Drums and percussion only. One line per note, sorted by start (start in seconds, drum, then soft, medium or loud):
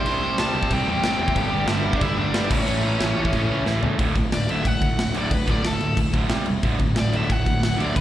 0.06 crash medium
0.38 snare loud
0.38 crash medium
0.63 kick medium
0.71 kick loud
0.71 crash medium
1.03 snare loud
1.03 crash medium
1.28 kick medium
1.36 kick loud
1.36 crash medium
1.68 snare loud
1.68 crash medium
1.93 kick medium
2.01 kick loud
2.01 crash medium
2.34 snare loud
2.34 crash medium
2.51 kick loud
2.51 crash loud
2.68 crash medium
3.00 snare loud
3.00 crash medium
3.25 kick medium
3.33 kick medium
3.33 crash medium
3.66 snare medium
3.83 floor tom loud
3.99 kick loud
3.99 crash medium
4.15 kick medium
4.15 crash medium
4.32 snare loud
4.32 crash medium
4.49 crash medium
4.65 kick loud
4.65 crash medium
4.82 kick medium
4.82 crash medium
4.99 snare loud
4.99 crash medium
5.14 crash medium
5.31 kick loud
5.31 crash medium
5.48 kick medium
5.48 crash medium
5.64 snare loud
5.64 crash medium
5.81 crash medium
5.97 kick loud
5.97 crash medium
6.14 kick medium
6.14 crash medium
6.29 snare loud
6.29 crash medium
6.46 crash medium
6.63 kick loud
6.63 crash medium
6.79 kick medium
6.79 crash medium
6.96 snare loud
6.96 crash medium
7.13 crash medium
7.30 kick loud
7.30 crash medium
7.46 kick medium
7.46 crash medium
7.63 snare loud
7.63 crash medium
7.80 crash medium
7.96 kick loud
7.96 crash medium